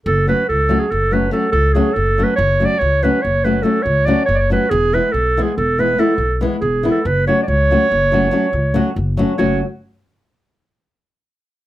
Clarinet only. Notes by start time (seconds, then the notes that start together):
0.07 A4
0.28 B4
0.49 A4
0.80 G#4
0.91 A4
1.13 B4
1.32 A4
1.52 A4
1.74 G#4
1.94 A4
2.24 B4
2.36 C#5
2.66 D5
2.79 C#5
3.03 B4
3.22 C#5
3.44 B4
3.63 A4
3.83 C#5
4.06 D5
4.26 C#5
4.35 C#5 D5
4.52 B4
4.70 G#4
4.94 B4
5.12 A4
5.43 G#4
5.57 A4
5.80 B4
5.99 A4
6.61 G#4
6.91 A4
7.06 B4
7.27 C#5
7.43 D5
7.48 C#5
9.38 C#5